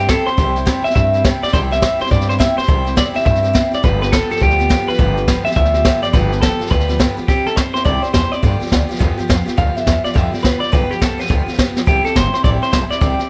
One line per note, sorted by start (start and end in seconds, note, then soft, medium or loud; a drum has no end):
0.00 0.13 G2 medium
0.00 0.09 C4 soft
0.09 0.27 C3 medium
0.09 0.28 G3 medium
0.09 0.28 C4 medium
0.09 0.27 E4 loud
0.09 0.26 G4 medium
0.09 0.28 A4 medium
0.09 kick medium
0.09 snare loud
0.09 hi-hat pedal medium
0.27 0.37 C4 soft
0.27 0.38 E4 soft
0.27 0.38 G4 medium
0.27 0.84 C5 loud
0.27 muted upright bass stroke medium
0.27 snare soft
0.37 0.71 C2 medium
0.37 0.56 C3 medium
0.37 0.56 G3 medium
0.37 0.56 C4 medium
0.37 0.56 E4 loud
0.37 0.54 G4 medium
0.37 kick loud
0.37 snare soft
0.56 0.66 C4 soft
0.56 0.66 E4 medium
0.56 0.67 G4 medium
0.56 snare soft
0.65 0.84 C3 medium
0.65 0.85 G3 medium
0.65 0.85 C4 medium
0.65 0.85 E4 loud
0.65 0.84 G4 medium
0.65 kick medium
0.65 snare loud
0.65 hi-hat pedal medium
0.84 0.95 C4 medium
0.84 0.96 E4 soft
0.84 0.96 G4 medium
0.84 0.94 E5 loud
0.84 muted upright bass stroke medium
0.84 snare soft
0.90 snare soft
0.95 1.29 G2 medium
0.95 1.14 G3 medium
0.95 1.14 C4 medium
0.95 1.14 E4 medium
0.95 1.12 G4 medium
0.95 1.22 E5 loud
0.95 kick loud
0.95 snare soft
1.13 1.24 C4 soft
1.13 1.24 E4 medium
1.13 1.24 G4 medium
1.13 snare soft
1.24 1.43 C3 medium
1.24 1.43 G3 medium
1.24 1.43 C4 medium
1.24 1.43 E4 medium
1.24 1.41 G4 medium
1.24 kick medium
1.24 snare loud
1.24 hi-hat pedal medium
1.42 1.53 C4 soft
1.42 1.53 E4 soft
1.42 1.53 G4 medium
1.42 1.53 D5 loud
1.42 muted upright bass stroke medium
1.42 snare soft
1.48 snare soft
1.53 1.86 C2 medium
1.53 1.71 C3 medium
1.53 1.71 G3 medium
1.53 1.72 C4 medium
1.53 1.71 E4 medium
1.53 1.70 G4 loud
1.53 1.58 C5 loud
1.53 kick loud
1.53 snare soft
1.71 1.82 C4 soft
1.71 1.82 E4 soft
1.71 1.82 G4 medium
1.71 2.01 E5 loud
1.71 snare soft
1.82 2.00 C3 medium
1.82 2.00 G3 medium
1.82 2.01 C4 medium
1.82 2.00 E4 medium
1.82 1.98 G4 medium
1.82 kick medium
1.82 snare loud
1.82 hi-hat pedal medium
1.99 2.10 C4 soft
1.99 2.11 E4 medium
1.99 2.10 G4 medium
1.99 2.11 C5 loud
1.99 muted upright bass stroke medium
1.99 snare soft
2.06 2.28 G3 medium
2.06 snare soft
2.11 2.44 G2 medium
2.11 2.29 C4 medium
2.11 2.28 E4 medium
2.11 2.26 G4 medium
2.11 2.28 D5 loud
2.11 kick loud
2.11 snare soft
2.21 snare soft
2.28 2.38 C4 medium
2.28 2.39 E4 medium
2.28 2.39 G4 medium
2.28 2.34 C5 loud
2.28 snare soft
2.38 2.57 C3 medium
2.38 2.57 G3 medium
2.38 2.58 C4 medium
2.38 2.57 E4 medium
2.38 2.56 G4 loud
2.38 2.57 E5 loud
2.38 kick medium
2.38 snare loud
2.38 hi-hat pedal medium
2.57 2.68 C4 soft
2.57 2.68 E4 medium
2.57 2.68 G4 medium
2.57 2.97 C5 loud
2.57 muted upright bass stroke medium
2.57 snare soft
2.63 snare soft
2.67 3.01 C2 loud
2.67 2.86 C3 medium
2.67 2.86 G3 medium
2.67 2.86 C4 medium
2.67 2.85 E4 medium
2.67 2.84 G4 medium
2.67 kick loud
2.67 snare soft
2.85 2.96 C4 soft
2.85 2.97 E4 soft
2.85 2.96 G4 medium
2.85 snare soft
2.96 3.15 C3 medium
2.96 3.15 G3 medium
2.96 3.15 C4 medium
2.96 3.14 E4 medium
2.96 3.13 G4 medium
2.96 3.02 D5 medium
2.96 kick medium
2.96 snare loud
2.96 hi-hat pedal medium
3.14 3.25 C4 soft
3.14 3.25 E4 medium
3.14 3.25 G4 medium
3.14 3.25 E5 loud
3.14 muted upright bass stroke medium
3.14 snare soft
3.21 snare soft
3.25 3.59 G2 medium
3.25 3.43 G3 medium
3.25 3.44 C4 medium
3.25 3.43 E4 medium
3.25 3.42 G4 medium
3.25 3.74 E5 loud
3.25 kick loud
3.25 snare soft
3.35 snare soft
3.43 3.53 C4 soft
3.43 3.54 E4 medium
3.43 3.54 G4 medium
3.43 snare soft
3.53 3.72 C3 medium
3.53 3.72 G3 medium
3.53 3.73 C4 medium
3.53 3.72 E4 medium
3.53 3.70 G4 medium
3.53 kick medium
3.53 snare loud
3.53 hi-hat pedal medium
3.72 3.84 C4 soft
3.72 3.83 E4 soft
3.72 3.83 G4 medium
3.72 3.84 D5 loud
3.72 muted upright bass stroke medium
3.72 snare soft
3.83 4.16 G1 loud
3.83 4.01 G2 medium
3.83 4.01 D3 medium
3.83 4.02 F3 medium
3.83 4.02 B3 loud
3.83 4.01 F4 medium
3.83 4.00 G4 medium
3.83 4.01 B4 loud
3.83 kick loud
3.83 snare soft
4.01 4.12 F3 soft
4.01 4.12 B3 medium
4.01 4.13 F4 medium
4.01 4.12 G4 medium
4.01 4.13 B4 medium
4.01 snare soft
4.12 4.30 G2 medium
4.12 4.31 D3 medium
4.12 4.31 F3 medium
4.12 4.31 B3 medium
4.12 4.30 F4 medium
4.12 4.29 G4 medium
4.12 4.30 A4 medium
4.12 kick medium
4.12 snare loud
4.12 hi-hat pedal medium
4.30 4.39 F3 soft
4.30 4.40 B3 soft
4.30 4.41 F4 medium
4.30 4.41 G4 medium
4.30 4.42 A4 loud
4.30 muted upright bass stroke medium
4.30 snare soft
4.36 snare soft
4.40 4.74 D2 medium
4.40 4.59 F3 medium
4.40 4.59 B3 medium
4.40 4.58 F4 medium
4.40 4.90 G4 medium
4.40 4.57 G4 medium
4.40 kick loud
4.40 snare soft
4.50 snare soft
4.59 4.69 F3 soft
4.59 4.69 B3 medium
4.59 4.70 F4 medium
4.59 4.69 G4 medium
4.59 snare soft
4.69 4.88 G2 medium
4.69 4.88 D3 medium
4.69 4.88 F3 medium
4.69 4.88 B3 medium
4.69 4.88 F4 medium
4.69 4.87 G4 medium
4.69 kick medium
4.69 snare loud
4.69 hi-hat pedal medium
4.88 4.98 F3 soft
4.88 4.98 B3 soft
4.88 4.99 F4 medium
4.88 4.98 G4 medium
4.88 5.44 B4 loud
4.88 muted upright bass stroke medium
4.88 snare soft
4.94 snare soft
4.98 5.32 G1 loud
4.98 5.16 G2 medium
4.98 5.17 D3 medium
4.98 5.17 F3 medium
4.98 5.17 B3 medium
4.98 5.17 F4 medium
4.98 5.16 G4 loud
4.98 kick loud
4.98 snare soft
5.17 5.27 F3 soft
5.17 5.28 B3 soft
5.17 5.28 F4 medium
5.17 5.27 G4 medium
5.17 snare soft
5.28 5.46 G2 loud
5.28 5.46 D3 medium
5.28 5.46 F3 medium
5.28 5.46 B3 medium
5.28 5.45 F4 medium
5.28 5.44 G4 medium
5.28 kick medium
5.28 snare loud
5.28 hi-hat pedal medium
5.45 5.55 F3 soft
5.45 5.56 B3 soft
5.45 5.56 F4 medium
5.45 5.56 G4 medium
5.45 5.50 E5 loud
5.45 muted upright bass stroke medium
5.45 snare soft
5.51 snare soft
5.56 5.89 D2 medium
5.56 5.74 F3 medium
5.56 5.75 B3 medium
5.56 5.74 F4 medium
5.56 5.73 G4 medium
5.56 6.02 E5 loud
5.56 kick loud
5.56 snare soft
5.65 snare soft
5.74 5.84 F3 medium
5.74 5.85 B3 medium
5.74 5.85 F4 medium
5.74 5.85 G4 medium
5.74 snare soft
5.85 6.03 G2 medium
5.85 6.03 D3 medium
5.85 6.03 F3 medium
5.85 6.03 B3 medium
5.85 6.02 F4 medium
5.85 6.01 G4 medium
5.85 kick medium
5.85 snare loud
5.85 hi-hat pedal medium
6.02 6.13 F3 soft
6.02 6.13 B3 soft
6.02 6.14 F4 medium
6.02 6.13 G4 medium
6.02 6.08 D5 loud
6.02 muted upright bass stroke medium
6.02 snare soft
6.13 6.46 G1 loud
6.13 6.31 G2 medium
6.13 6.32 D3 medium
6.13 6.32 F3 medium
6.13 6.32 B3 medium
6.13 6.31 F4 medium
6.13 6.30 G4 medium
6.13 6.41 B4 medium
6.13 kick loud
6.13 snare soft
6.32 6.42 F3 soft
6.32 6.42 B3 medium
6.32 6.43 F4 soft
6.32 6.42 G4 medium
6.32 snare soft
6.42 6.60 G2 medium
6.42 6.60 D3 medium
6.42 6.60 F3 medium
6.42 6.60 B3 medium
6.42 6.59 F4 medium
6.42 6.58 G4 medium
6.42 6.68 A4 medium
6.42 kick medium
6.42 snare loud
6.42 hi-hat pedal medium
6.60 6.68 F3 soft
6.60 6.69 B3 medium
6.60 6.70 F4 medium
6.60 6.70 G4 medium
6.60 muted upright bass stroke medium
6.60 snare soft
6.66 6.88 F3 medium
6.66 6.88 B3 medium
6.66 snare soft
6.71 7.04 D2 medium
6.71 6.88 F4 medium
6.71 6.87 G4 medium
6.71 7.14 B4 medium
6.71 kick loud
6.71 snare soft
6.80 snare soft
6.88 6.99 F3 soft
6.88 6.99 B3 medium
6.88 7.00 F4 medium
6.88 6.99 G4 medium
6.88 snare soft
6.99 7.17 G2 medium
6.99 7.17 D3 medium
6.99 7.18 F3 medium
6.99 7.17 B3 medium
6.99 7.17 F4 medium
6.99 7.16 G4 medium
6.99 kick medium
6.99 snare loud
6.99 hi-hat pedal medium
7.17 7.28 F3 soft
7.17 7.29 B3 medium
7.17 7.28 F4 medium
7.17 7.28 G4 medium
7.17 muted upright bass stroke medium
7.17 snare soft
7.28 7.45 C2 medium
7.28 7.46 C3 medium
7.28 7.47 G3 medium
7.28 7.47 C4 medium
7.28 7.46 E4 medium
7.28 7.47 G4 medium
7.28 7.44 G4 medium
7.28 kick loud
7.28 snare soft
7.46 7.56 C4 soft
7.46 7.57 E4 soft
7.46 7.56 G4 medium
7.46 7.56 A4 medium
7.46 muted upright bass stroke soft
7.46 snare soft
7.56 7.74 B1 medium
7.56 7.74 G3 medium
7.56 7.75 C4 medium
7.56 7.75 E4 medium
7.56 7.73 G4 medium
7.56 7.73 C5 medium
7.56 kick medium
7.56 snare loud
7.56 hi-hat pedal medium
7.74 7.85 C4 soft
7.74 7.85 E4 medium
7.74 7.85 G4 soft
7.74 7.84 C5 loud
7.74 muted upright bass stroke soft
7.74 snare soft
7.84 8.03 C2 medium
7.84 8.03 C3 medium
7.84 8.03 G3 medium
7.84 8.04 C4 medium
7.84 8.02 E4 medium
7.84 8.01 G4 medium
7.84 8.03 D5 loud
7.84 kick loud
7.84 snare soft
8.02 8.13 C4 soft
8.02 8.13 E4 soft
8.02 8.14 G4 medium
8.02 8.12 C5 loud
8.02 muted upright bass stroke medium
8.02 snare soft
8.13 8.32 E2 medium
8.13 8.32 G3 medium
8.13 8.32 C4 medium
8.13 8.32 E4 medium
8.13 8.30 G4 medium
8.13 8.32 C5 medium
8.13 kick medium
8.13 snare loud
8.13 hi-hat pedal medium
8.32 8.43 C4 soft
8.32 8.43 E4 soft
8.32 8.43 G4 medium
8.32 8.89 D5 loud
8.32 muted upright bass stroke medium
8.32 snare soft
8.43 8.61 G2 medium
8.43 8.61 D3 medium
8.43 8.61 F3 medium
8.43 8.61 B3 medium
8.43 8.60 F4 medium
8.43 8.59 G4 medium
8.43 kick loud
8.43 snare soft
8.60 8.70 F3 soft
8.60 8.71 B3 soft
8.60 8.71 F4 medium
8.60 8.71 G4 medium
8.60 muted upright bass stroke medium
8.60 snare soft
8.66 snare soft
8.71 8.89 D2 medium
8.71 8.89 F3 medium
8.71 8.90 B3 medium
8.71 8.89 F4 medium
8.71 8.88 G4 medium
8.71 kick medium
8.71 snare loud
8.71 hi-hat pedal medium
8.89 8.99 F3 medium
8.89 8.99 B3 medium
8.89 9.00 F4 medium
8.89 9.00 G4 medium
8.89 muted upright bass stroke medium
8.89 snare soft
8.95 9.18 G2 medium
8.95 snare soft
8.99 9.18 E2 medium
8.99 9.18 D3 medium
8.99 9.18 F3 loud
8.99 9.19 B3 loud
8.99 9.18 F4 loud
8.99 9.16 G4 loud
8.99 kick loud
8.99 snare soft
9.18 9.27 F3 medium
9.18 9.28 B3 medium
9.18 9.29 F4 medium
9.18 9.29 G4 medium
9.18 muted upright bass stroke medium
9.18 snare soft
9.28 9.47 F2 medium
9.28 9.47 F3 medium
9.28 9.47 B3 medium
9.28 9.46 F4 medium
9.28 9.45 G4 medium
9.28 kick medium
9.28 snare loud
9.28 hi-hat pedal medium
9.46 9.57 F3 medium
9.46 9.57 B3 medium
9.46 9.58 F4 medium
9.46 9.57 G4 medium
9.46 muted upright bass stroke medium
9.46 snare soft
9.57 9.75 D2 medium
9.57 9.76 G2 medium
9.57 9.76 D3 medium
9.57 9.76 F3 medium
9.57 9.76 B3 medium
9.57 9.75 F4 medium
9.57 9.74 G4 medium
9.57 9.76 F5 loud
9.57 kick loud
9.57 snare soft
9.75 9.85 F3 soft
9.75 9.86 B3 soft
9.75 9.87 F4 soft
9.75 9.86 G4 medium
9.75 10.04 E5 loud
9.75 muted upright bass stroke medium
9.75 snare soft
9.86 10.04 E2 medium
9.86 10.04 F3 medium
9.86 10.05 B3 medium
9.86 10.04 F4 medium
9.86 10.03 G4 medium
9.86 kick medium
9.86 snare loud
9.86 hi-hat pedal medium
10.04 10.14 F3 medium
10.04 10.14 B3 medium
10.04 10.14 F4 medium
10.04 10.15 G4 medium
10.04 10.09 D5 loud
10.04 muted upright bass stroke medium
10.04 snare soft
10.14 10.33 F2 medium
10.14 10.32 G2 medium
10.14 10.33 D3 medium
10.14 10.33 F3 medium
10.14 10.32 B3 medium
10.14 10.31 F4 medium
10.14 10.30 G4 medium
10.14 10.33 E5 loud
10.14 kick loud
10.14 snare soft
10.31 10.41 F3 soft
10.31 10.43 B3 medium
10.31 10.43 F4 medium
10.31 10.43 G4 medium
10.31 10.43 D5 loud
10.31 muted upright bass stroke medium
10.31 snare soft
10.39 10.61 F3 medium
10.39 snare soft
10.43 10.61 D2 medium
10.43 10.62 B3 medium
10.43 10.61 F4 medium
10.43 10.60 G4 medium
10.43 10.60 B4 medium
10.43 kick medium
10.43 snare loud
10.43 hi-hat pedal medium
10.60 10.72 F3 soft
10.60 10.72 B3 soft
10.60 10.72 F4 soft
10.60 10.72 G4 medium
10.60 10.71 D5 loud
10.60 muted upright bass stroke soft
10.60 snare soft
10.68 10.90 G2 medium
10.68 10.90 D3 medium
10.68 snare soft
10.73 10.90 B1 medium
10.73 10.91 F3 medium
10.73 10.90 B3 medium
10.73 10.89 F4 medium
10.73 10.88 G4 medium
10.73 10.91 B4 medium
10.73 kick loud
10.73 snare soft
10.89 10.99 F3 soft
10.89 11.00 B3 soft
10.89 11.01 F4 medium
10.89 11.00 G4 medium
10.89 11.01 G4 medium
10.89 muted upright bass stroke medium
10.89 snare soft
11.00 11.18 C2 loud
11.00 11.18 F3 medium
11.00 11.19 B3 medium
11.00 11.18 F4 medium
11.00 11.17 G4 medium
11.00 11.20 A4 medium
11.00 kick medium
11.00 snare loud
11.00 hi-hat pedal medium
11.18 11.28 F3 soft
11.18 11.29 B3 medium
11.18 11.29 F4 soft
11.18 11.29 G4 medium
11.18 11.76 B4 loud
11.18 muted upright bass stroke soft
11.18 snare soft
11.25 11.47 G2 medium
11.25 11.47 D3 medium
11.25 snare soft
11.29 11.47 D2 medium
11.29 11.47 F3 medium
11.29 11.47 B3 medium
11.29 11.47 F4 medium
11.29 11.45 G4 medium
11.29 kick loud
11.29 snare soft
11.46 11.56 F3 soft
11.46 11.57 B3 soft
11.46 11.58 F4 medium
11.46 11.57 G4 medium
11.46 muted upright bass stroke medium
11.46 snare soft
11.53 snare soft
11.58 11.75 B1 medium
11.58 11.76 F3 medium
11.58 11.76 B3 medium
11.58 11.76 F4 medium
11.58 11.74 G4 medium
11.58 kick medium
11.58 snare loud
11.58 hi-hat pedal medium
11.76 11.86 F3 soft
11.76 11.87 B3 medium
11.76 11.87 F4 medium
11.76 11.86 G4 medium
11.76 muted upright bass stroke soft
11.76 snare medium
11.86 12.04 C2 medium
11.86 12.04 C3 medium
11.86 12.05 G3 medium
11.86 12.05 C4 medium
11.86 12.05 E4 loud
11.86 12.04 G4 medium
11.86 12.03 G4 medium
11.86 kick loud
11.86 snare soft
12.04 12.15 C4 soft
12.04 12.16 E4 soft
12.04 12.15 G4 medium
12.04 12.16 A4 medium
12.04 muted upright bass stroke medium
12.04 snare soft
12.15 12.33 G1 loud
12.15 12.33 G3 medium
12.15 12.34 C4 medium
12.15 12.33 E4 medium
12.15 12.32 G4 medium
12.15 12.33 C5 medium
12.15 kick medium
12.15 snare loud
12.15 hi-hat pedal medium
12.33 12.44 C4 soft
12.33 12.45 E4 soft
12.33 12.44 G4 medium
12.33 12.44 C5 medium
12.33 muted upright bass stroke medium
12.33 snare soft
12.44 12.61 A1 medium
12.44 12.62 C3 medium
12.44 12.63 G3 medium
12.44 12.63 C4 medium
12.44 12.63 E4 medium
12.44 12.61 G4 loud
12.44 12.49 D5 loud
12.44 kick loud
12.44 snare soft
12.62 12.73 C4 soft
12.62 12.73 E4 medium
12.62 12.73 G4 medium
12.62 12.72 C5 medium
12.62 muted upright bass stroke medium
12.62 snare soft
12.72 12.90 B1 medium
12.72 12.90 G3 medium
12.72 12.91 C4 medium
12.72 12.90 E4 medium
12.72 12.89 G4 medium
12.72 12.78 C5 medium
12.72 kick medium
12.72 snare loud
12.72 hi-hat pedal medium
12.90 13.01 C4 soft
12.90 13.01 E4 medium
12.90 13.01 G4 medium
12.90 13.29 D5 medium
12.90 muted upright bass stroke medium
12.90 snare soft
13.01 13.19 C2 medium
13.01 13.19 C3 medium
13.01 13.19 G3 medium
13.01 13.20 C4 medium
13.01 13.20 E4 medium
13.01 13.18 G4 medium
13.01 kick loud
13.01 snare soft
13.19 13.29 C4 soft
13.19 13.29 E4 soft
13.19 13.29 G4 medium
13.19 muted upright bass stroke medium
13.19 snare soft